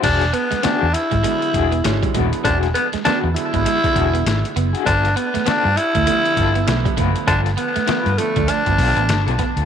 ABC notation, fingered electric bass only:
X:1
M:4/4
L:1/16
Q:"Swing 16ths" 1/4=99
K:Emix
V:1 name="Fingered electric bass" clef=bass
E,,,2 z3 E,, z G,,, z2 E,,,2 G,,, z ^D,,, z | E,,,2 z3 E,, z G,,, z2 E,,,2 G,,, z F,,, z | =G,,,2 z3 =G,, z D,, z2 G,,,2 B,,, z F,,, z | =G,,,2 z3 =G,, z D,, z G,,, B,,, A,,, G,,, B,,, z D,, |]